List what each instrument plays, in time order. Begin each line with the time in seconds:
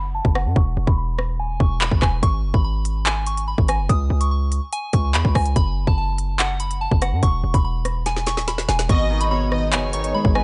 Already playing: 808-style bass F#1
0.15 synth bell A5
0.25 808-style bass F#1, kick
0.35 synth bell F#5, cross-stick
0.46 808-style bass F#2
0.56 808-style bass E1, synth bell C#6, kick
0.77 808-style bass E1
0.87 808-style bass E1, synth bell B5, kick
0.98 synth bell B5
1.19 cross-stick
1.39 808-style bass D#1, synth bell G#5
1.50 808-style bass E1
1.60 808-style bass E1, synth bell C#6, kick
1.81 synth bell B5, clap
1.92 808-style bass G#1, kick
2.02 808-style bass E1, synth bell G#5, kick, cross-stick, clap
2.23 808-style bass G#1, synth bell C#6, kick, closed hi-hat
2.44 808-style bass F#1
2.54 808-style bass G#1, synth bell B5, kick
2.64 synth bell B5
2.85 closed hi-hat
3.06 synth bell G#5, clap, closed hi-hat
3.27 synth bell C#6, closed hi-hat
3.37 closed hi-hat
3.48 synth bell B5
3.58 808-style bass G#1, kick
3.68 synth bell G#5, cross-stick, closed hi-hat
3.79 808-style bass F#1
3.89 808-style bass C#2, synth bell D#6, kick, closed hi-hat
4.10 808-style bass C#2
4.21 synth bell C#6, closed hi-hat
4.31 synth bell C#6
4.52 closed hi-hat
4.73 synth bell G#5, closed hi-hat
4.93 808-style bass C#2, synth bell C#6, kick, closed hi-hat
5.14 808-style bass E2, synth bell B5, clap, closed hi-hat
5.25 808-style bass C#2, kick
5.35 808-style bass C#2, synth bell G#5, kick, cross-stick, open hi-hat
5.46 closed hi-hat
5.56 808-style bass F#1, synth bell B5, kick, closed hi-hat
5.87 808-style bass F#1, synth bell A5, kick
5.98 synth bell A5
6.18 closed hi-hat
6.39 synth bell F#5, clap, closed hi-hat
6.60 synth bell B5, closed hi-hat
6.71 closed hi-hat
6.81 synth bell A5
6.91 808-style bass F#1, kick
7.02 synth bell F#5, cross-stick, closed hi-hat
7.12 808-style bass F#2
7.23 808-style bass E1, synth bell C#6, kick, closed hi-hat
7.44 808-style bass E1
7.54 808-style bass E1, synth bell B5, kick, closed hi-hat
7.64 synth bell B5
7.85 cross-stick, closed hi-hat
8.06 synth bell G#5, snare, closed hi-hat
8.16 snare
8.26 synth bell C#6, snare, closed hi-hat
8.37 808-style bass D#1, snare
8.48 synth bell B5, snare, closed hi-hat
8.53 808-style bass E1
8.58 snare
8.69 808-style bass E1, synth bell G#5, snare
8.79 snare, closed hi-hat
8.89 808-style bass G#1, harp B2, ambient pad D#3 B3 G#4, violin section D#5, synth bell C#6, kick, closed hi-hat
9.10 harp D#3
9.21 synth bell B5, closed hi-hat
9.31 harp B2, violin section C#5, synth bell B5
9.51 harp D#3, violin section D#5, cross-stick
9.73 808-style bass F#1, harp B2, violin section C#5, synth bell G#5, clap, closed hi-hat
9.93 808-style bass G#1, harp D#3, synth bell C#6, closed hi-hat
10.04 closed hi-hat
10.14 harp G#3, synth bell B5
10.25 808-style bass G#1, kick
10.35 harp D#3, violin section B4, synth bell G#5, cross-stick